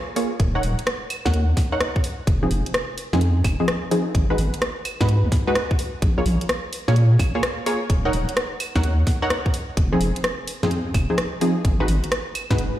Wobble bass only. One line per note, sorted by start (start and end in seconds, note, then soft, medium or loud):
0.40 0.60 D#1 loud
0.63 0.75 D#1 medium
1.26 1.54 D#2 medium
2.27 2.47 F1 loud
2.51 2.63 F1 medium
3.13 3.42 F2 medium
3.44 3.56 F1 medium
4.15 4.35 G#1 loud
4.38 4.50 G#1 medium
5.01 5.23 G#2 loud
5.24 5.30 D#2 loud
6.02 6.22 A#1 loud
6.26 6.38 A#1 medium
6.88 7.17 A#2 loud
7.19 7.31 A#1 medium
7.90 8.10 D#1 loud
8.13 8.25 D#1 medium
8.75 9.04 D#2 medium
9.77 9.97 F1 loud
10.00 10.13 F1 medium
10.63 10.92 F2 medium
10.94 11.06 F1 medium
11.65 11.85 G#1 loud
11.88 12.00 G#1 medium
12.51 12.58 G#2 loud
12.58 12.70 F#1 medium